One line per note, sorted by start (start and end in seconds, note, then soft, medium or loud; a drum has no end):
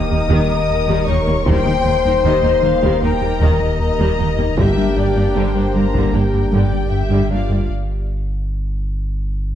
0.00 1.46 D#1 medium
0.00 1.42 A#3 medium
0.00 1.44 D#4 medium
0.00 1.44 G4 medium
0.00 1.42 A#4 medium
0.00 1.47 A#4 medium
0.00 1.05 D#5 loud
0.00 1.05 D#6 medium
0.11 0.18 D#2 medium
0.11 0.23 D#2 medium
0.11 0.22 G3 medium
0.11 0.18 G3 medium
0.11 0.19 A#3 medium
0.29 0.37 D#2 medium
0.29 0.42 D#2 medium
0.29 0.41 D#3 medium
0.29 0.48 D#3 medium
0.29 0.48 G3 medium
0.50 0.62 D#2 medium
0.70 0.81 D#2 medium
0.88 0.96 D#2 medium
0.88 1.00 D#2 medium
0.88 1.00 D#3 medium
0.88 1.06 D#3 medium
0.88 1.07 G3 medium
1.06 1.15 D#2 medium
1.06 1.19 D#2 medium
1.06 1.15 D#2 medium
1.06 1.15 A#3 medium
1.06 1.15 D#4 medium
1.06 1.19 D#4 medium
1.06 1.46 C#5 medium
1.06 1.46 C#6 medium
1.27 1.39 D#2 medium
1.27 1.35 D#2 medium
1.27 1.35 G3 medium
1.27 1.35 A#3 medium
1.27 1.39 D#4 medium
1.45 4.60 D#1 medium
1.45 1.55 D#2 medium
1.45 1.59 D#2 medium
1.45 1.64 D#3 medium
1.45 1.59 D#3 medium
1.45 1.64 G3 medium
1.45 4.54 A#3 medium
1.45 4.54 D#4 medium
1.45 4.54 G4 medium
1.45 4.54 A#4 medium
1.45 2.99 C5 loud
1.45 2.23 G5 medium
1.45 3.02 C6 medium
1.45 taiko medium
1.65 1.74 D#2 soft
1.65 1.77 D#3 medium
1.65 1.73 A#3 soft
1.65 1.78 A#3 medium
1.65 1.73 D#4 soft
1.85 1.93 D#2 medium
1.85 1.97 D#3 medium
1.85 1.93 G3 medium
1.85 1.93 A#3 medium
2.04 2.16 D#2 medium
2.04 2.13 D#2 soft
2.04 2.17 G3 medium
2.04 2.13 A#3 medium
2.04 2.13 D#4 medium
2.24 2.36 D#2 medium
2.24 2.32 D#2 medium
2.24 2.36 D#3 medium
2.24 2.43 D#3 medium
2.24 2.42 G3 medium
2.24 2.64 D#5 medium
2.43 2.55 D#2 medium
2.43 2.51 D#2 medium
2.43 2.51 A#3 medium
2.43 2.52 D#4 medium
2.43 2.56 D#4 medium
2.63 2.71 D#2 medium
2.63 2.72 D#2 medium
2.63 2.75 D#3 medium
2.63 2.71 G3 medium
2.63 2.71 A#3 medium
2.63 2.75 A#3 medium
2.63 3.03 F5 medium
2.83 2.94 D#2 medium
2.83 2.91 D#2 medium
2.83 3.01 D#3 medium
2.83 3.01 G3 medium
2.83 taiko medium
3.02 3.10 D#2 medium
3.02 3.14 D#2 medium
3.02 3.11 D#2 medium
3.02 3.14 G3 medium
3.02 3.11 A#3 medium
3.02 3.11 D#4 medium
3.02 3.78 A#4 loud
3.02 3.41 G5 medium
3.02 3.79 A#5 medium
3.22 3.33 D#2 medium
3.22 3.30 D#2 medium
3.22 3.30 G3 medium
3.22 3.34 G3 medium
3.22 3.30 A#3 medium
3.40 3.52 D#2 medium
3.40 3.49 D#2 medium
3.40 3.50 D#2 medium
3.40 3.53 D#3 medium
3.40 3.60 D#3 medium
3.40 3.60 G3 medium
3.40 4.58 D#5 medium
3.60 3.72 D#2 medium
3.79 3.91 D#2 medium
3.79 4.56 A#4 medium
3.79 4.56 A#5 medium
3.99 4.11 D#2 medium
3.99 4.07 D#2 medium
3.99 4.12 D#3 medium
3.99 4.18 D#3 medium
3.99 4.18 G3 medium
4.18 4.30 D#2 medium
4.18 4.27 D#2 medium
4.18 4.27 A#3 medium
4.18 4.27 D#4 medium
4.18 4.31 D#4 medium
4.38 4.50 D#2 medium
4.38 4.47 D#2 medium
4.38 4.46 G3 medium
4.38 4.46 A#3 medium
4.38 4.50 D#4 medium
4.57 4.66 G1 medium
4.57 7.69 G1 medium
4.57 4.66 G2 medium
4.57 4.70 G2 medium
4.57 4.76 D3 medium
4.57 4.76 G3 medium
4.57 4.70 G3 medium
4.57 7.66 A#3 medium
4.57 7.70 D4 medium
4.57 5.72 G4 loud
4.57 7.66 G4 medium
4.57 7.66 A#4 medium
4.57 4.97 E5 medium
4.57 5.75 G5 medium
4.57 taiko medium
4.76 4.85 G2 soft
4.76 4.89 G3 medium
4.76 4.84 A#3 soft
4.76 4.84 D4 soft
4.76 4.89 D4 medium
4.97 5.05 G1 soft
4.97 5.05 G2 medium
4.97 5.08 G3 medium
4.97 5.05 G3 medium
4.97 5.05 A#3 soft
4.97 5.09 D4 medium
4.97 5.36 D5 medium
5.16 5.24 G2 soft
5.16 5.28 G2 medium
5.16 5.24 A#3 medium
5.16 5.29 A#3 medium
5.16 5.24 D4 medium
5.35 5.44 G1 medium
5.35 5.43 G2 medium
5.35 5.48 G2 medium
5.35 5.53 D3 medium
5.35 5.54 G3 medium
5.35 5.48 G3 medium
5.35 6.14 C5 medium
5.55 5.63 G2 soft
5.55 5.67 G2 medium
5.55 5.63 A#3 soft
5.55 5.63 D4 soft
5.55 5.67 G4 medium
5.74 5.83 G1 medium
5.74 5.82 G2 medium
5.74 5.83 G3 soft
5.74 5.87 G3 medium
5.74 5.83 A#3 soft
5.74 5.87 D4 medium
5.74 6.14 A#4 medium
5.74 6.13 A#5 medium
5.94 6.02 G2 medium
5.94 6.06 G2 medium
5.94 6.13 D3 medium
5.94 6.06 G3 medium
5.94 6.13 G3 medium
5.94 taiko medium
6.13 6.21 G1 soft
6.13 6.21 G2 medium
6.13 6.26 G2 medium
6.13 6.25 A#3 soft
6.13 6.22 A#3 soft
6.13 6.22 D4 medium
6.13 7.30 G4 medium
6.13 6.52 A#4 medium
6.13 7.30 G5 medium
6.33 6.41 G2 medium
6.33 6.45 G2 medium
6.33 6.41 G3 soft
6.33 6.41 A#3 soft
6.52 6.60 G1 medium
6.52 6.60 G2 medium
6.52 6.64 G2 medium
6.52 6.71 D3 medium
6.52 6.64 G3 medium
6.52 6.71 G3 medium
6.52 6.92 D5 medium
6.73 6.84 G2 medium
6.91 7.03 G2 medium
6.91 7.31 E5 medium
7.10 7.18 G2 medium
7.10 7.23 G2 medium
7.10 7.30 D3 medium
7.10 7.23 G3 medium
7.10 7.30 G3 medium
7.30 7.38 G1 soft
7.30 7.42 G2 medium
7.30 7.38 G2 soft
7.30 7.38 A#3 medium
7.30 7.38 D4 soft
7.30 7.70 F4 medium
7.30 7.42 G4 medium
7.30 7.70 D5 medium
7.30 7.69 F5 medium
7.49 7.61 G2 soft
7.49 7.58 G2 soft
7.49 7.58 G3 soft
7.49 7.58 A#3 medium
7.49 7.62 G4 medium
7.69 9.55 G1 medium